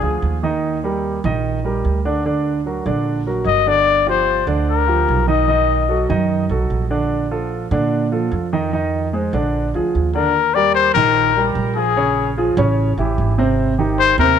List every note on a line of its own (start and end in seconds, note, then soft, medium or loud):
0.00 0.21 D2 medium
0.00 0.36 F3 medium
0.00 0.36 F4 medium
0.00 0.40 G#4 medium
0.00 0.36 G#4 medium
0.22 1.18 D#2 medium
0.43 0.76 D#3 medium
0.43 0.77 D#4 medium
0.43 0.77 D#5 medium
0.84 1.17 G3 medium
0.84 1.17 G4 medium
0.84 1.17 A#4 medium
1.24 1.81 A#1 medium
1.24 1.57 D#3 medium
1.24 1.58 D#4 medium
1.24 1.58 D#5 medium
1.64 1.98 G3 medium
1.64 1.98 G4 medium
1.64 1.98 A#4 medium
1.85 2.80 D2 medium
2.05 2.22 D3 medium
2.05 2.22 D4 medium
2.05 2.22 D5 medium
2.25 2.58 D3 medium
2.25 2.59 D4 medium
2.25 2.59 D5 medium
2.66 2.82 F#3 medium
2.66 2.83 F#4 medium
2.66 2.83 A#4 medium
2.86 3.42 A#1 medium
2.86 3.19 D3 medium
2.86 3.19 D4 medium
2.86 3.19 D5 medium
3.27 3.60 F#3 medium
3.27 3.60 F#4 medium
3.27 3.60 A#4 medium
3.45 4.41 G1 medium
3.45 3.70 D#5 medium
3.67 4.00 D3 medium
3.67 4.00 D4 medium
3.67 4.00 D5 medium
3.67 4.08 D5 loud
4.06 4.40 F3 medium
4.06 4.40 F4 medium
4.06 4.40 G4 medium
4.06 4.46 C5 medium
4.47 5.04 D2 medium
4.47 4.81 D3 medium
4.47 4.81 D4 medium
4.47 4.81 D5 medium
4.70 5.26 A#4 medium
4.87 5.21 F3 medium
4.87 5.21 F4 medium
4.87 5.21 G4 medium
5.08 6.04 B1 medium
5.27 5.45 D#3 medium
5.27 5.45 D#4 medium
5.27 5.45 D#5 medium
5.27 6.06 D#5 medium
5.48 5.81 D#3 medium
5.48 5.82 D#4 medium
5.48 5.82 D#5 medium
5.89 6.06 F#3 medium
5.89 6.06 F#4 medium
5.89 6.06 A4 medium
6.09 6.47 F#2 medium
6.09 6.43 D#3 medium
6.09 6.43 D#4 medium
6.09 6.43 D#5 medium
6.49 6.69 B1 medium
6.49 6.83 F#3 medium
6.49 6.84 F#4 medium
6.49 6.84 A4 medium
6.70 7.65 A#1 medium
6.90 7.24 D3 medium
6.90 7.24 D4 medium
6.90 7.24 D5 medium
7.31 7.64 F3 medium
7.31 7.64 F4 medium
7.31 7.65 A4 medium
7.71 8.28 A#2 medium
7.71 8.05 D3 medium
7.71 8.05 D4 medium
7.71 8.05 D5 medium
8.12 8.45 F3 medium
8.12 8.45 F4 medium
8.12 8.46 A4 medium
8.32 9.27 F2 medium
8.53 8.69 D#3 medium
8.53 8.70 D#4 medium
8.53 8.70 D#5 medium
8.73 9.06 D#3 medium
8.73 9.06 D#4 medium
8.73 9.06 D#5 medium
9.13 9.30 G#3 medium
9.13 9.30 G#4 medium
9.13 9.30 C5 medium
9.33 9.71 A#1 medium
9.33 9.67 D3 medium
9.33 9.67 D4 medium
9.33 9.67 D5 medium
9.74 9.93 D2 medium
9.74 10.08 F3 medium
9.74 10.08 F4 medium
9.74 10.08 G#4 medium
9.95 10.90 D#2 medium
10.15 10.31 D3 medium
10.15 10.32 D4 medium
10.15 10.56 A#4 medium
10.15 10.32 D5 medium
10.54 10.89 G3 medium
10.54 10.89 G4 medium
10.54 10.89 A#4 medium
10.54 10.74 D5 medium
10.75 10.94 C5 loud
10.94 11.52 A#1 medium
10.94 11.29 D#3 medium
10.94 11.29 D#4 medium
10.94 11.52 A#4 loud
10.94 11.30 D#5 medium
11.37 11.70 G3 medium
11.37 11.70 G4 medium
11.37 11.70 A#4 medium
11.55 12.51 A#1 medium
11.76 11.93 F3 medium
11.76 11.93 F4 medium
11.76 12.33 G#4 medium
11.76 11.93 G#4 medium
11.96 12.30 C#3 medium
11.96 12.30 C#4 medium
11.96 12.30 C#5 medium
12.38 12.54 F3 medium
12.38 12.54 F4 medium
12.38 12.54 G#4 medium
12.57 12.95 A1 loud
12.57 12.91 C#3 medium
12.57 12.91 C#4 medium
12.57 12.91 C#5 medium
12.98 13.16 A1 medium
12.98 13.31 E3 medium
12.98 13.32 E4 medium
12.98 13.32 G4 medium
13.18 14.13 G#1 medium
13.38 13.71 C3 medium
13.38 13.72 C4 medium
13.38 13.72 C5 medium
13.79 14.12 D#3 medium
13.79 14.12 D#4 medium
13.79 14.12 G4 medium
14.00 14.18 C5 loud
14.18 14.39 D#2 loud
14.18 14.39 C3 medium
14.18 14.39 C4 medium
14.18 14.39 A#4 loud
14.18 14.39 C5 medium